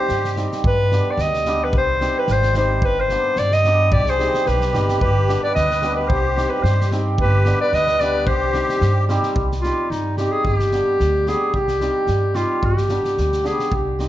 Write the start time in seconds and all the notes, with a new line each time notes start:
Already playing: G3 G4 C5
0.09 G2, snare
0.24 snare
0.36 G3 C4 D#4 G4, snare
0.52 snare
0.64 G2 B4, kick
0.92 G3 B3 D4 G4, snare
1.11 D5
1.17 D2 D#5, snare
1.34 snare
1.45 G3 B3 D4 G4, snare
1.64 B4
1.73 C2, kick
1.77 C5
2.01 G3 C4 D#4 G4, snare
2.19 B4
2.28 G#1, snare
2.32 C5
2.42 snare
2.54 G3 C4 D#4 G4 C5, snare
2.82 G1 B4, kick
3.00 C5
3.09 G3 B3 D4 G4, snare
3.36 G2 D5, snare
3.52 D#5, snare
3.64 G3 B3 D4 G4, snare
3.91 C2 G4 D5, kick
4.06 G#4 C5, snare
4.19 G3 C4 D#4 G4, snare
4.34 snare
4.46 B1 G4 B4, snare
4.61 snare
4.73 G1 G3 C4 D#4 G4, snare
4.88 snare
5.01 G1 G4 B4, kick
5.28 G3 B3 D4 G4, snare
5.43 B4 D5
5.55 D2 B4 D#5, snare
5.71 snare
5.82 G3 B3 D4 G4, snare
5.96 G4 B4
6.08 C2 G4 C5, kick
6.36 G3 C4 D#4 G4, snare
6.49 G4 B4
6.62 G2 G4 C5, snare
6.81 snare
6.92 G3 C4 D#4 G4, snare
7.18 G1 G4 B4, kick
7.45 G3 B3 D4 G4, snare
7.61 B4 D5
7.73 D2 B4 D#5, snare
7.87 snare
8.00 G3 B3 D4 G4 B4 D5, snare
8.26 C2 G4 C5, kick
8.53 G3 C4 D#4 G4, snare
8.69 snare
8.81 G2, snare
9.09 G3 C4 D#4 G4, snare
9.23 snare
9.36 C2, kick
9.52 snare
9.61 G3 C4 F4, snare
9.65 D#4 G4
9.90 G2 D#4, snare
10.17 G3 C4 D#4 G4, snare
10.31 G#4
10.45 G1 G4, kick
10.60 snare
10.72 G3 B3 D4 G4, snare
11.00 D2, snare
11.27 G3 B3 D4 G4 G#4, snare
11.54 C2 G4, kick
11.68 snare
11.80 G3 C4 D#4 G4, snare
12.07 G2, snare
12.34 G3 C4 D#4 F4 G4, snare
12.63 G1 G4, kick
12.77 snare
12.89 G3 B3 D4 G4, snare
13.05 snare
13.17 D2, snare
13.32 snare
13.44 G3 B3 D4 G4 G#4, snare
13.59 snare
13.72 C2 G4, kick
13.99 G3 C4 D#4 G4, snare